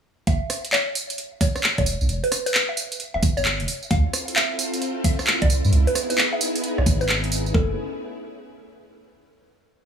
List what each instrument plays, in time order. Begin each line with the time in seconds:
0.27 sub bass F#1, synth pluck E5, kick, closed hi-hat, tambourine
0.50 cross-stick, open hi-hat, tambourine
0.65 closed hi-hat, tambourine
0.73 synth pluck C#5, clap, tambourine
0.95 open hi-hat, tambourine
1.10 closed hi-hat, tambourine
1.18 closed hi-hat, tambourine
1.41 synth pluck C#5, kick, open hi-hat, tambourine
1.56 cross-stick, tambourine
1.64 clap, tambourine
1.78 sub bass E1, synth pluck C#5, kick, closed hi-hat
1.86 open hi-hat, tambourine
2.01 sub bass B1, tambourine
2.09 sub bass E1, closed hi-hat, tambourine
2.24 synth pluck B4, open hi-hat
2.32 cross-stick, open hi-hat, tambourine
2.46 synth pluck B4, closed hi-hat, tambourine
2.54 clap, tambourine
2.69 synth pluck E5
2.77 open hi-hat, tambourine
2.92 closed hi-hat, tambourine
3.00 closed hi-hat, tambourine
3.14 sub bass D1, synth pluck E5
3.23 kick, open hi-hat, tambourine
3.37 sub bass G1, synth pluck C#5, tambourine
3.45 clap, tambourine
3.60 sub bass E1, closed hi-hat
3.68 open hi-hat, tambourine
3.83 tambourine
3.91 sub bass D2, string machine C4 E4 F4 A4, synth pluck F5, kick, closed hi-hat, tambourine
4.13 cross-stick, open hi-hat, tambourine
4.28 closed hi-hat, tambourine
4.36 synth pluck E5, clap, tambourine
4.59 open hi-hat, tambourine
4.74 closed hi-hat, tambourine
4.82 closed hi-hat, tambourine
5.04 synth pluck E5, kick, open hi-hat, tambourine
5.19 cross-stick, tambourine
5.27 clap, tambourine
5.42 sub bass C2, synth pluck D5, kick, closed hi-hat
5.50 open hi-hat, tambourine
5.65 sub bass G2, tambourine
5.73 sub bass C#2, string machine B3 D#4 G#4, closed hi-hat, tambourine
5.87 synth pluck B4, open hi-hat
5.95 cross-stick, open hi-hat, tambourine
6.10 synth pluck B4, closed hi-hat, tambourine
6.18 clap, tambourine
6.33 synth pluck E5
6.41 open hi-hat, tambourine
6.56 closed hi-hat, tambourine
6.64 closed hi-hat, tambourine
6.78 sub bass B1, synth pluck C#5, cross-stick
6.86 sub bass G#1, kick, open hi-hat, tambourine
7.01 synth pluck B4, tambourine
7.09 clap, tambourine
7.24 closed hi-hat
7.32 open hi-hat, tambourine
7.46 tambourine
7.54 sub bass F#1, string machine A3 C#4 E4 G#4, synth pluck A4, kick